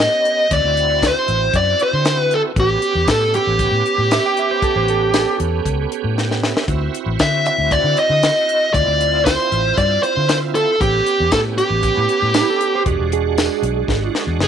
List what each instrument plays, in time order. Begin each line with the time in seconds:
Already playing: tonewheel organ B3 C#4 G4, lead electric guitar D#5
0.00 snare, closed hi-hat, tambourine
0.25 closed hi-hat
0.49 fingered electric bass D2, tonewheel organ C4 E4 F#4, lead electric guitar D5, kick, closed hi-hat
0.64 fingered electric bass D2
0.77 closed hi-hat
1.03 kick, snare, closed hi-hat, tambourine
1.08 lead electric guitar C5
1.28 fingered electric bass A1, closed hi-hat
1.53 fingered electric bass F#2, lead electric guitar D5, kick, closed hi-hat
1.80 lead electric guitar C5, closed hi-hat
1.93 fingered electric bass D3
2.05 snare, closed hi-hat, tambourine
2.21 lead electric guitar B4
2.31 lead electric guitar A4, closed hi-hat
2.56 fingered electric bass A1, tonewheel organ B3 C#4 G4, lead electric guitar G4, kick, closed hi-hat
2.82 closed hi-hat
2.95 fingered electric bass E2
3.08 fingered electric bass A2, lead electric guitar A4, kick, snare, closed hi-hat, tambourine
3.34 lead electric guitar G4, closed hi-hat
3.47 fingered electric bass A1
3.59 kick, closed hi-hat
3.72 fingered electric bass A2
3.86 closed hi-hat
3.98 fingered electric bass A2
4.11 electric slide guitar E5, snare, closed hi-hat, tambourine
4.26 electric slide guitar G5
4.37 electric slide guitar E5, closed hi-hat
4.51 electric slide guitar C5
4.62 electric slide guitar A4, kick, closed hi-hat
4.76 fingered electric bass A1, electric slide guitar C5
4.88 electric slide guitar A4, closed hi-hat
5.14 electric slide guitar A4, snare, closed hi-hat, tambourine
5.40 fingered electric bass E2, closed hi-hat
5.65 fingered electric bass C#2, kick, closed hi-hat
5.92 closed hi-hat
6.04 fingered electric bass A2
6.17 tonewheel organ G5, snare
6.31 snare
6.43 tonewheel organ E5, snare
6.57 snare
6.68 fingered electric bass D2, tonewheel organ C4 E4 F#4, kick, closed hi-hat
6.94 closed hi-hat
7.06 fingered electric bass A1
7.19 fingered electric bass D3, lead electric guitar E5, kick, snare, closed hi-hat, tambourine
7.46 lead electric guitar E5, closed hi-hat
7.58 fingered electric bass D2
7.71 lead electric guitar D5, kick, closed hi-hat
7.84 fingered electric bass D3
7.97 lead electric guitar D#5, closed hi-hat
8.10 fingered electric bass D3
8.23 snare, closed hi-hat, tambourine
8.49 closed hi-hat
8.73 fingered electric bass D2, tonewheel organ C4 E4 F4, lead electric guitar D5, kick, closed hi-hat
8.87 fingered electric bass D2
9.01 closed hi-hat
9.25 lead electric guitar C5, kick, snare, closed hi-hat, tambourine
9.52 fingered electric bass A1, closed hi-hat
9.77 fingered electric bass G2, lead electric guitar D5, kick, closed hi-hat
10.03 lead electric guitar C5, closed hi-hat
10.17 fingered electric bass D3
10.29 lead electric guitar C5, snare, closed hi-hat, tambourine
10.55 lead electric guitar A4, closed hi-hat
10.80 fingered electric bass A1, tonewheel organ B3 C#4 G4, lead electric guitar G4, kick, closed hi-hat
11.06 closed hi-hat
11.20 fingered electric bass E2
11.32 fingered electric bass A2, lead electric guitar A4, kick, snare, closed hi-hat, tambourine
11.58 lead electric guitar G4, closed hi-hat
11.70 fingered electric bass A1
11.83 kick, closed hi-hat
11.97 fingered electric bass A2
12.09 closed hi-hat
12.22 fingered electric bass A2
12.34 electric slide guitar E4, snare, closed hi-hat, tambourine
12.50 electric slide guitar A4
12.61 closed hi-hat
12.75 electric slide guitar C5
12.85 fingered electric bass E1, tonewheel organ G#3 D4 F#4, electric slide guitar G4, kick, closed hi-hat
12.99 fingered electric bass E1
13.12 electric slide guitar G#4, closed hi-hat
13.38 snare, closed hi-hat, tambourine
13.62 fingered electric bass B1, closed hi-hat
13.88 fingered electric bass G#1, kick, snare
14.15 snare
14.27 fingered electric bass E2
14.39 fingered electric bass F#1, snare
14.44 lead electric guitar G#4